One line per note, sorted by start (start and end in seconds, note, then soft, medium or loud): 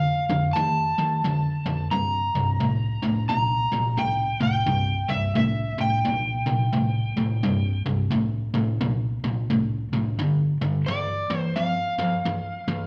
0.00 0.25 F2 medium
0.00 0.25 D3 medium
0.00 0.57 F5 medium
0.30 0.53 F2 medium
0.30 0.53 D3 medium
0.53 0.94 F2 medium
0.53 0.94 D#3 medium
0.53 1.91 A5 medium
0.99 1.21 F2 medium
0.99 1.22 D#3 medium
1.24 1.62 F2 medium
1.24 1.63 D3 medium
1.66 1.89 F2 medium
1.66 1.90 D3 medium
1.91 2.30 C2 medium
1.91 2.31 G2 medium
1.91 3.28 A#5 medium
2.35 2.58 C2 medium
2.35 2.58 G2 medium
2.60 2.99 C2 medium
2.60 2.99 A2 medium
3.03 3.26 C2 medium
3.03 3.27 A2 medium
3.29 3.68 C2 medium
3.29 3.68 A#2 medium
3.29 4.00 A#5 loud
3.72 3.95 C2 medium
3.72 3.96 A#2 medium
3.97 4.36 C2 medium
3.97 4.36 A2 medium
3.97 4.41 G5 medium
4.41 4.64 C2 medium
4.41 4.64 A2 medium
4.41 5.12 G5 medium
4.66 5.05 C2 medium
4.66 5.05 G2 medium
5.09 5.33 C2 medium
5.09 5.33 G2 medium
5.09 5.36 E5 medium
5.35 5.74 C2 medium
5.35 5.74 A2 medium
5.35 5.80 E5 medium
5.78 6.02 C2 medium
5.78 6.02 A2 medium
5.78 7.82 G5 medium
6.05 6.43 C2 medium
6.05 6.43 A#2 medium
6.46 6.70 C2 medium
6.46 6.70 A#2 medium
6.73 7.11 C2 medium
6.73 7.12 A2 medium
7.17 7.40 C2 medium
7.17 7.40 A2 medium
7.43 7.81 C2 medium
7.43 7.81 G2 medium
7.86 8.09 C2 medium
7.86 8.09 G2 medium
8.11 8.49 C2 medium
8.11 8.50 A2 medium
8.54 8.77 C2 medium
8.54 8.78 A2 medium
8.81 9.19 C2 medium
8.81 9.19 A#2 medium
9.24 9.47 C2 medium
9.24 9.47 A#2 medium
9.50 9.88 C2 medium
9.50 9.88 A2 medium
9.93 10.16 C2 medium
9.93 10.16 A2 medium
10.19 10.57 G2 medium
10.19 10.57 D3 medium
10.62 10.85 G2 medium
10.62 10.85 D3 medium
10.86 11.26 G2 medium
10.86 11.26 E3 medium
10.86 11.39 D5 medium
11.30 11.53 G2 medium
11.30 11.53 E3 medium
11.39 11.57 C5 medium
11.56 11.94 G2 medium
11.56 11.94 F3 medium
11.56 12.87 F5 medium
11.98 12.22 G2 medium
11.98 12.22 F3 medium
12.25 12.63 G2 medium
12.25 12.64 E3 medium
12.68 12.87 G2 medium
12.68 12.87 E3 medium